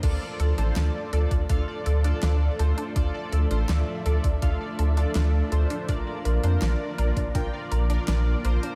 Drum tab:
CC |x---------------|----------------|----------------|
HH |x-xxx-xxx-xxx-xx|x-xxx-xxx-xxx-xx|x-xxx-xxx-xxx-xx|
SD |----o-------o---|----o-------o---|----o-------o---|
BD |o------oo-------|o------oo-------|o------oo-------|